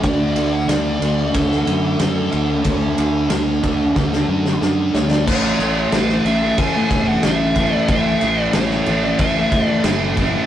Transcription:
0.03 fingered electric bass D2, distorted electric guitar D3 A3 D4, lead electric guitar D5, kick, ride
0.36 fingered electric bass D2, distorted electric guitar A3 D4, ride
0.53 lead electric guitar F#5
0.68 fingered electric bass D2, distorted electric guitar D3 A3, lead electric guitar D5, snare, ride
0.72 distorted electric guitar D4
1.01 fingered electric bass D2, distorted electric guitar A3 D4, ride
1.33 fingered electric bass D2, distorted electric guitar D3 A3 D4, lead electric guitar A4, kick, ride
1.52 snare
1.66 fingered electric bass F#2, distorted electric guitar A3 D4, ride
1.99 fingered electric bass F#2, distorted electric guitar D3 A3 D4, snare, ride
2.32 fingered electric bass D2, distorted electric guitar A3 D4, ride
2.63 fingered electric bass D2, distorted electric guitar D3 A3 D4, kick, ride
2.97 fingered electric bass D2, distorted electric guitar A3 D4, ride
3.29 fingered electric bass D2, distorted electric guitar D3 A3 D4, snare, ride
3.63 fingered electric bass D2, distorted electric guitar A3 D4, kick, ride
3.96 fingered electric bass D2, distorted electric guitar D3 A3 D4, kick, snare
4.13 snare
4.28 fingered electric bass F#2, distorted electric guitar A3 D4
4.46 snare
4.61 fingered electric bass F#2, distorted electric guitar D3 A3 D4, snare
4.94 fingered electric bass D2, distorted electric guitar A3 D4, lead electric guitar C#5, snare
5.11 lead electric guitar D5, snare
5.26 fingered electric bass A1, distorted electric guitar A2 E3 A3, lead electric guitar C#5, kick, crash
5.59 fingered electric bass A1, distorted electric guitar A2 E3 A3, crash
5.92 fingered electric bass A1, distorted electric guitar A2 E3 A3, snare, crash
5.98 lead electric guitar B4
6.09 snare
6.25 fingered electric bass A1, distorted electric guitar A2 E3 A3, lead electric guitar E5, crash
6.42 distorted electric guitar E3 A3
6.58 fingered electric bass A2, lead electric guitar G#5, kick, crash
6.75 distorted electric guitar E3 A3
6.91 fingered electric bass E1, distorted electric guitar A2 E3, kick, snare, crash
6.95 distorted electric guitar A3
7.08 distorted electric guitar E3 A3, lead electric guitar F#5
7.23 fingered electric bass A1, distorted electric guitar A2 E3, lead electric guitar E5, snare, crash
7.27 distorted electric guitar A3
7.55 distorted electric guitar A2 E3, kick, crash
7.60 distorted electric guitar A3
7.73 distorted electric guitar E3 A3, lead electric guitar D5
7.88 fingered electric bass A1, distorted electric guitar A2 E3, lead electric guitar E5, kick, crash
7.93 distorted electric guitar A3
8.21 fingered electric bass A1, distorted electric guitar A2 E3, crash
8.26 distorted electric guitar A3
8.41 lead electric guitar D5
8.53 fingered electric bass A1, distorted electric guitar A2 E3, lead electric guitar C#5, snare, crash
8.58 distorted electric guitar A3
8.71 snare
8.86 fingered electric bass A1, distorted electric guitar A2 E3, crash
8.91 distorted electric guitar A3
9.04 distorted electric guitar E3 A3, lead electric guitar D5
9.19 fingered electric bass A1, lead electric guitar E5, kick, crash
9.36 distorted electric guitar E3 A3
9.52 fingered electric bass A2, distorted electric guitar A2 E3 A3, kick, crash
9.65 distorted electric guitar A3, lead electric guitar D5
9.72 distorted electric guitar E3
9.84 fingered electric bass F#1, distorted electric guitar A2 E3, snare, crash
9.88 distorted electric guitar A3
10.17 distorted electric guitar A2 E3 A3, kick, crash
10.34 distorted electric guitar E3 A3

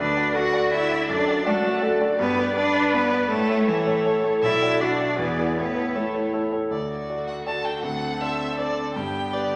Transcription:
Already playing: viola B4
0.00 grand piano D2, cello D4, violin D5
0.17 grand piano D4 F#4 D5
0.35 grand piano D4 F#4 D5, cello F#4, viola A4, violin F#5
0.53 grand piano D4 F#4 D5
0.71 grand piano D4 F#4 D5, cello E4, violin E5
0.91 grand piano D4 F#4 D5
1.08 grand piano F#2, cello D4, viola A4, violin D5
1.27 grand piano D4 F#4 D5
1.46 cello A3, grand piano D4 F#4 D5, viola F#4, violin A4
1.52 cello G3
1.59 cello A3
1.64 grand piano D4 F#4 D5
1.81 grand piano D4 F#4 D5, viola A4
2.01 grand piano D4 F#4 D5
2.18 grand piano G2, cello B3, viola G4, violin B4 D5
2.38 grand piano D4 B4 D5
2.55 cello D4, grand piano D4 B4 D5, viola B4, violin D5
2.74 grand piano D4 B4 D5
2.91 cello B3, grand piano D4 B4 D5, violin B4
3.12 grand piano D4 B4 D5
3.30 grand piano A2, cello A3, violin A4 C#5, viola A4
3.49 grand piano A3 A4 C#5
3.67 cello E3, grand piano A3 A4 C#5, violin E4
3.86 grand piano A3 A4 C#5
4.05 grand piano A3 A4 C#5
4.24 grand piano A3 A4 C#5
4.42 grand piano B1, cello E4, violin D5 E5
4.62 grand piano D4 F#4 D5
4.80 grand piano D4 F#4 D5, cello D4, viola F#4, violin D5
5.00 grand piano D4 F#4 D5
5.18 grand piano E2, cello B3, viola G#4, violin B4
5.38 grand piano E4 G#4 D5
5.56 grand piano A2, cello B3, viola E4, violin B4 C#5
5.75 grand piano E4 A4 C#5
5.95 cello A3, grand piano E4 A4 C#5, violin A4
6.14 grand piano E4 A4 C#5
6.33 grand piano E4 A4 C#5
6.52 grand piano E4 A4 C#5
6.70 grand piano D2, cello D3, viola A3, violin F#4 D5
6.91 violin D5
7.09 grand piano F#4 A4 D5
7.27 violin F#5
7.46 grand piano F#4 A4 D5, violin A5
7.65 violin G5
7.83 grand piano D2, viola C4, violin A4 F#5
8.21 grand piano D4 A4 C5, violin E5
8.58 grand piano D4 A4 C5, violin D5
8.94 grand piano G2, cello D3, viola B3, violin G4 G5
9.33 grand piano D4 G4 B4, violin D5

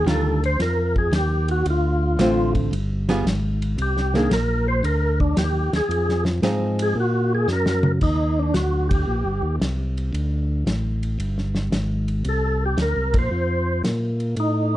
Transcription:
0.05 tonewheel organ D2, hollow-body jazz guitar D#3 G3 D4 F4, snare, hi-hat pedal, ride
0.11 tonewheel organ A4
0.44 tonewheel organ C5, ride
0.59 tonewheel organ F2 A#4, snare, ride
0.96 tonewheel organ G#4, kick
1.12 tonewheel organ D#2 G4, snare, hi-hat pedal, ride
1.48 tonewheel organ F#4, ride
1.65 tonewheel organ D2, ride
1.70 tonewheel organ F4
2.18 tonewheel organ A1, hollow-body jazz guitar D3 A3 C4 F4, snare, hi-hat pedal, ride
2.55 kick, ride
2.71 tonewheel organ G1, ride
3.09 hollow-body jazz guitar G3 B3 F4 G#4, snare, ride
3.25 tonewheel organ G#1, snare, hi-hat pedal, ride
3.62 ride
3.78 tonewheel organ C2, ride
3.82 tonewheel organ G4
3.97 snare
4.14 hollow-body jazz guitar D#3 A#3 D4, tonewheel organ G#4, snare
4.30 tonewheel organ A#1 A#4, snare, hi-hat pedal, ride
4.68 tonewheel organ C5
4.83 tonewheel organ D2 A#4, ride
5.20 tonewheel organ D4, kick
5.36 tonewheel organ D#2 G4, snare, hi-hat pedal, ride
5.73 tonewheel organ D#2 G#4, snare, ride
5.89 tonewheel organ F2, ride
6.09 snare
6.25 snare
6.42 tonewheel organ G#2, hollow-body jazz guitar F3 C4 D#4 G#4, snare, hi-hat pedal, ride
6.79 tonewheel organ G#4, ride
6.95 tonewheel organ A#2
7.00 tonewheel organ F#4
7.35 tonewheel organ G#4
7.48 tonewheel organ F#2, snare, hi-hat pedal
7.52 tonewheel organ A#4
7.66 snare
7.83 mid tom
8.01 tonewheel organ D#2 D#4, kick, crash
8.39 tonewheel organ D4
8.54 tonewheel organ D2 F#4, snare, hi-hat pedal, ride
8.89 tonewheel organ G4, kick, ride
9.07 tonewheel organ A#1
9.25 tonewheel organ G1
9.42 tonewheel organ D#2
9.60 tonewheel organ C2, snare, hi-hat pedal, ride
9.98 ride
10.13 tonewheel organ D2, ride
10.66 tonewheel organ A1, snare, hi-hat pedal, ride
11.03 ride
11.19 tonewheel organ G1, ride
11.38 snare
11.55 snare
11.72 tonewheel organ G#1, snare, hi-hat pedal, ride
12.08 ride
12.25 tonewheel organ C2, ride
12.29 tonewheel organ A4
12.66 tonewheel organ G4
12.77 tonewheel organ D2, snare, hi-hat pedal, ride
12.82 tonewheel organ A#4
12.96 tonewheel organ C2
13.13 tonewheel organ A#1, kick, ride
13.19 tonewheel organ C5
13.31 tonewheel organ F2
13.84 tonewheel organ A#2, snare, hi-hat pedal, ride
14.20 ride
14.37 tonewheel organ A2 D#4, ride

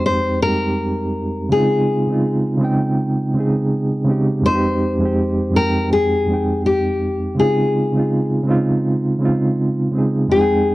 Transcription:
Already playing: reed electric piano F2 G#3 C4 D#4 G4 G#4 G5
0.06 nylon-string guitar C5
0.40 reed electric piano F2 G3 C4, nylon-string guitar A#4
0.45 reed electric piano G#3 D#4 G4
1.49 reed electric piano C#3 G#3 C4, nylon-string guitar G#4
1.55 reed electric piano D#4 F4
2.07 reed electric piano C#3 G#3 C4
2.12 reed electric piano D#4 F4
2.58 reed electric piano C#3 G#3 C4
2.63 reed electric piano D#4 G5
3.34 reed electric piano C#3 G#3 C4
3.39 reed electric piano D#4 G#4
4.05 reed electric piano C#3 G#3 C4
4.10 reed electric piano D#4 G4
4.42 reed electric piano F2 G#3 C4, nylon-string guitar C5
4.47 reed electric piano D#4 F4
4.55 reed electric piano G4
4.98 reed electric piano F2 G#3 C4
5.03 reed electric piano D#4 G4
5.51 reed electric piano F2 G#3 C4
5.56 reed electric piano D#4 G5, nylon-string guitar A#4
5.93 nylon-string guitar G#4
6.27 reed electric piano F2 G#3 C4
6.32 reed electric piano D#4 G5
6.66 nylon-string guitar G4
7.35 reed electric piano C#3 G#3 C4
7.39 reed electric piano D#4 F4, nylon-string guitar G#4
7.92 reed electric piano C#3 G#3 C4
7.97 reed electric piano D#4 F4
8.44 reed electric piano C#3 G#3 C4
8.49 reed electric piano D#4 F4
9.19 reed electric piano C#3 G#3 C4
9.24 reed electric piano D#4 F4
9.92 reed electric piano C#3 G#3 C4
9.97 reed electric piano D#4 G#4
10.28 reed electric piano F2 G#3 C4, nylon-string guitar G#4
10.33 reed electric piano D#4 F4
10.41 reed electric piano G5

